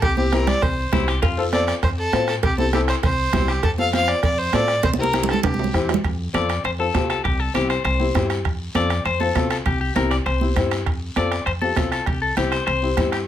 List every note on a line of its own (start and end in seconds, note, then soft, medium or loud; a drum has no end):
0.02 0.50 C2 medium
0.02 0.16 G4 medium
0.02 bombo low medium
0.02 bombo rim medium
0.02 cowbell medium
0.02 long guiro medium
0.17 0.22 C4 medium
0.17 0.23 E4 medium
0.17 0.34 G4 medium
0.17 0.23 G4 medium
0.17 high conga medium
0.32 0.53 C4 medium
0.32 0.53 E4 medium
0.32 0.53 G4 medium
0.32 0.48 A#4 medium
0.32 bombo rim medium
0.32 high conga medium
0.32 short guiro medium
0.47 0.63 D5 loud
0.47 bombo rim medium
0.47 low conga medium
0.47 short guiro medium
0.62 0.86 C2 medium
0.62 1.07 C5 medium
0.62 bombo low medium
0.62 bombo rim medium
0.62 cowbell medium
0.62 long guiro medium
0.92 1.16 C2 medium
0.92 1.08 C4 medium
0.92 1.08 E4 medium
0.92 1.09 G4 medium
0.92 bombo low medium
0.92 bombo rim medium
0.92 high conga medium
0.92 low conga medium
0.92 low timbale medium
0.92 short guiro medium
1.08 1.22 G4 medium
1.08 bombo rim medium
1.08 short guiro medium
1.22 1.71 F2 loud
1.22 1.43 F4 medium
1.22 bombo low medium
1.22 bombo rim medium
1.22 cowbell loud
1.22 long guiro medium
1.37 1.43 C4 medium
1.37 1.43 F4 medium
1.37 1.43 A4 medium
1.52 1.73 C4 medium
1.52 1.74 F4 medium
1.52 1.74 A4 medium
1.52 1.66 D5 medium
1.52 bombo rim medium
1.52 high conga medium
1.52 short guiro medium
1.67 1.74 D5 medium
1.67 bombo rim medium
1.67 short guiro medium
1.83 2.07 F2 loud
1.83 1.90 C5 medium
1.83 bombo low medium
1.83 bombo rim medium
1.83 cowbell medium
1.83 long guiro medium
1.98 2.26 A4 medium
2.12 2.37 A2 medium
2.12 2.29 C4 medium
2.12 2.29 F4 medium
2.12 2.29 C5 medium
2.12 bombo rim medium
2.12 high conga medium
2.12 low timbale medium
2.12 short guiro medium
2.28 2.35 A4 medium
2.28 bombo rim medium
2.28 short guiro medium
2.43 2.91 C2 medium
2.43 2.57 G4 medium
2.43 bombo low medium
2.43 bombo rim medium
2.43 cowbell loud
2.43 long guiro medium
2.58 2.63 C4 medium
2.58 2.63 E4 medium
2.58 2.64 G4 medium
2.58 2.72 A4 medium
2.58 high conga medium
2.73 2.94 C4 medium
2.73 2.94 E4 medium
2.73 2.80 G4 medium
2.73 2.94 A4 medium
2.73 bombo rim medium
2.73 high conga medium
2.73 short guiro medium
2.88 2.95 C5 loud
2.88 bombo rim medium
2.88 short guiro medium
3.03 3.27 C2 loud
3.03 3.50 C5 medium
3.03 bombo low medium
3.03 bombo rim medium
3.03 cowbell medium
3.03 long guiro medium
3.33 3.57 C2 medium
3.33 3.49 C4 medium
3.33 3.49 E4 medium
3.33 3.49 G4 medium
3.33 bombo low medium
3.33 bombo rim medium
3.33 high conga medium
3.33 low conga medium
3.33 low timbale medium
3.33 short guiro medium
3.48 3.63 G4 medium
3.48 bombo rim medium
3.48 short guiro medium
3.63 4.11 F2 loud
3.63 3.70 A4 medium
3.63 bombo low medium
3.63 bombo rim medium
3.63 cowbell medium
3.63 long guiro medium
3.78 3.83 C4 medium
3.78 3.84 F4 medium
3.78 3.84 A4 medium
3.78 3.93 F5 loud
3.78 high conga medium
3.93 4.14 C4 medium
3.93 4.14 F4 medium
3.93 4.15 C5 medium
3.93 4.10 F5 loud
3.93 bombo rim medium
3.93 high conga medium
3.93 short guiro medium
4.08 4.23 D5 loud
4.08 bombo rim medium
4.08 short guiro medium
4.23 4.47 F2 medium
4.23 4.40 D5 medium
4.23 bombo low medium
4.23 bombo rim medium
4.23 cowbell medium
4.23 long guiro medium
4.38 4.55 C5 medium
4.53 4.77 A2 medium
4.53 4.69 C4 medium
4.53 4.69 F4 medium
4.53 4.69 A4 medium
4.53 4.83 D5 loud
4.53 bombo rim medium
4.53 high conga medium
4.53 low timbale medium
4.53 short guiro medium
4.68 bombo rim medium
4.68 short guiro medium
4.83 5.32 C2 medium
4.83 4.91 C5 medium
4.83 bombo low medium
4.83 bombo rim medium
4.83 cowbell loud
4.83 high conga medium
4.83 long guiro medium
4.93 high conga medium
4.98 5.04 C4 medium
4.98 5.04 E4 medium
4.98 5.04 G4 medium
4.98 5.27 A#4 medium
5.03 high conga medium
5.13 5.35 C4 medium
5.13 5.35 E4 medium
5.13 5.35 G4 medium
5.13 bombo rim medium
5.13 high conga medium
5.13 short guiro medium
5.23 low conga loud
5.29 5.43 A4 medium
5.29 bombo rim medium
5.29 high timbale medium
5.29 short guiro medium
5.33 low conga medium
5.43 5.68 C2 loud
5.43 5.86 G4 medium
5.43 bombo low medium
5.43 bombo rim medium
5.43 cowbell medium
5.43 low conga medium
5.43 high timbale loud
5.43 long guiro medium
5.54 low conga medium
5.59 low timbale medium
5.64 low conga medium
5.73 5.98 E2 medium
5.73 5.89 C4 medium
5.73 5.90 E4 medium
5.73 5.90 G4 medium
5.73 bombo low medium
5.73 bombo rim medium
5.73 short guiro medium
5.89 bombo rim medium
5.89 low timbale loud
5.89 short guiro medium
5.94 low conga loud
6.04 6.28 F2 medium
6.04 bombo low medium
6.04 bombo rim medium
6.04 high timbale medium
6.04 long guiro medium
6.33 6.58 F2 loud
6.33 6.50 C4 medium
6.33 6.50 F4 medium
6.33 6.50 A4 medium
6.33 6.65 D5 medium
6.33 bombo rim medium
6.33 high conga medium
6.33 high timbale medium
6.33 short guiro medium
6.49 bombo rim medium
6.49 high timbale medium
6.49 short guiro medium
6.64 6.88 F2 medium
6.64 6.70 C5 loud
6.64 bombo rim medium
6.64 high timbale medium
6.64 long guiro medium
6.79 6.84 C4 medium
6.79 6.84 F4 medium
6.79 6.85 A4 medium
6.79 7.09 A4 medium
6.94 7.19 C2 medium
6.94 7.15 C4 medium
6.94 7.15 F4 medium
6.94 7.16 G4 medium
6.94 bombo low medium
6.94 bombo rim medium
6.94 high conga medium
6.94 high timbale medium
6.94 low timbale medium
6.94 short guiro medium
7.10 7.24 A4 medium
7.10 bombo rim medium
7.10 high timbale medium
7.10 short guiro medium
7.24 7.49 C2 medium
7.24 7.40 G4 medium
7.24 bombo low medium
7.24 bombo rim medium
7.24 high timbale medium
7.24 long guiro medium
7.40 7.55 A4 medium
7.54 7.79 C2 loud
7.54 7.70 C4 medium
7.54 7.70 E4 medium
7.54 7.71 G4 medium
7.54 7.69 G4 medium
7.54 bombo rim medium
7.54 high conga medium
7.54 high timbale medium
7.54 short guiro medium
7.70 7.83 C5 medium
7.70 bombo rim medium
7.70 high timbale medium
7.70 short guiro medium
7.84 8.09 C2 loud
7.84 8.27 C5 medium
7.84 bombo rim medium
7.84 high timbale medium
7.84 long guiro medium
7.99 8.05 C4 medium
7.99 8.05 E4 medium
7.99 8.05 G4 medium
7.99 high conga medium
8.14 8.45 G2 medium
8.14 8.36 C4 medium
8.14 8.36 E4 medium
8.14 8.36 G4 medium
8.14 bombo low medium
8.14 bombo rim medium
8.14 high conga medium
8.14 high timbale medium
8.14 low timbale medium
8.14 short guiro medium
8.30 bombo rim medium
8.30 high timbale medium
8.30 short guiro medium
8.45 8.69 F2 loud
8.45 bombo low medium
8.45 bombo rim medium
8.45 high timbale medium
8.45 long guiro medium
8.75 8.99 F2 loud
8.75 8.91 C4 medium
8.75 8.91 F4 medium
8.75 8.91 A4 medium
8.75 9.03 D5 loud
8.75 bombo rim medium
8.75 high conga medium
8.75 high timbale medium
8.75 short guiro medium
8.90 bombo rim medium
8.90 high timbale medium
8.90 short guiro medium
9.05 9.29 F2 medium
9.05 9.21 C5 loud
9.05 bombo rim medium
9.05 high timbale medium
9.05 long guiro medium
9.20 9.25 C4 medium
9.20 9.26 F4 medium
9.20 9.48 A4 medium
9.20 9.26 C5 medium
9.20 high conga medium
9.35 9.60 C2 medium
9.35 9.57 C4 medium
9.35 9.57 F4 medium
9.35 9.57 A4 medium
9.35 bombo low medium
9.35 bombo rim medium
9.35 high conga medium
9.35 high timbale medium
9.35 low timbale medium
9.35 short guiro medium
9.50 9.56 A4 medium
9.50 bombo rim medium
9.50 high timbale medium
9.50 short guiro medium
9.65 9.90 C2 loud
9.65 9.80 G4 medium
9.65 bombo low medium
9.65 bombo rim medium
9.65 high timbale medium
9.65 long guiro medium
9.81 9.95 G4 medium
9.95 10.20 C2 loud
9.95 10.11 C4 medium
9.95 10.12 E4 medium
9.95 10.12 G4 medium
9.95 10.10 A#4 medium
9.95 bombo rim medium
9.95 high conga medium
9.95 high timbale medium
9.95 short guiro medium
10.11 10.16 D5 medium
10.11 bombo rim medium
10.11 high timbale medium
10.11 short guiro medium
10.26 10.50 C2 medium
10.26 10.71 C5 medium
10.26 bombo rim medium
10.26 high timbale medium
10.26 long guiro medium
10.40 10.46 C4 medium
10.40 10.46 E4 medium
10.40 10.46 G4 medium
10.40 high conga medium
10.56 10.86 G2 medium
10.56 10.77 C4 medium
10.56 10.77 E4 medium
10.56 10.77 G4 medium
10.56 bombo low medium
10.56 bombo rim medium
10.56 high conga medium
10.56 high timbale medium
10.56 short guiro medium
10.71 bombo rim medium
10.71 high timbale medium
10.71 short guiro medium
10.86 11.10 F2 loud
10.86 bombo low medium
10.86 bombo rim medium
10.86 high timbale medium
10.86 long guiro medium
11.16 11.40 F2 medium
11.16 11.32 C4 medium
11.16 11.32 F4 medium
11.16 11.33 A4 medium
11.16 11.45 D5 medium
11.16 bombo rim medium
11.16 high conga medium
11.16 high timbale medium
11.16 short guiro medium
11.32 bombo rim medium
11.32 high timbale medium
11.32 short guiro medium
11.46 11.70 F2 medium
11.46 11.51 C5 medium
11.46 bombo rim medium
11.46 high timbale medium
11.46 long guiro medium
11.61 11.67 C4 medium
11.61 11.67 F4 medium
11.61 11.67 G4 medium
11.61 11.91 A4 medium
11.61 high conga medium
11.76 12.01 C2 medium
11.76 11.98 C4 medium
11.76 11.98 F4 medium
11.76 11.98 A4 medium
11.76 bombo low medium
11.76 bombo rim medium
11.76 high conga medium
11.76 high timbale medium
11.76 low timbale medium
11.76 short guiro medium
11.92 12.06 A4 medium
11.92 bombo rim medium
11.92 high timbale medium
11.92 short guiro medium
12.06 12.31 C2 medium
12.06 12.21 G4 medium
12.06 bombo low medium
12.06 bombo rim medium
12.06 high timbale medium
12.06 long guiro medium
12.22 12.36 A4 medium
12.37 12.61 C2 loud
12.37 12.53 C4 medium
12.37 12.53 E4 medium
12.37 12.51 G4 medium
12.37 12.53 G4 medium
12.37 bombo rim medium
12.37 high conga medium
12.37 high timbale medium
12.37 short guiro medium
12.52 12.65 C5 medium
12.52 bombo rim medium
12.52 high timbale medium
12.52 short guiro medium
12.67 12.91 C2 medium
12.67 13.09 C5 loud
12.67 bombo rim medium
12.67 high timbale medium
12.67 long guiro medium
12.82 12.87 C4 medium
12.82 12.88 E4 medium
12.82 12.88 G4 medium
12.97 13.27 G2 medium
12.97 13.18 C4 medium
12.97 13.18 E4 medium
12.97 13.19 G4 medium
12.97 bombo low medium
12.97 bombo rim medium
12.97 high conga medium
12.97 high timbale medium
12.97 short guiro medium
13.12 13.17 G4 medium
13.12 bombo rim medium
13.12 high timbale medium
13.12 short guiro medium